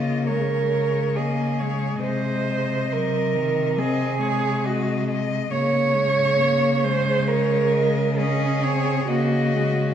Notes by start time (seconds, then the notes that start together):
Already playing: C#3 A#3 F4 D#5
0.26 G#3 A#4 C#5
0.72 C#5
1.16 A#3 G#4 D#5
1.60 G#3 C#5
2.01 C3 C5 D#5
2.92 F#3 A#4
3.35 D#3
3.77 C4 G#4 D#5
4.21 G#3 C#5
4.65 F#4 D#5
5.09 D#5
5.51 C#3 A#3 C#5
5.93 G#3
6.37 A#3
6.83 G#3 C5
7.28 A#4 C#5
7.73 D#5
8.17 C#4 G#4 D#5
8.63 C4 C#5
9.07 C#3 A#3 F#4 D#5
9.54 G#3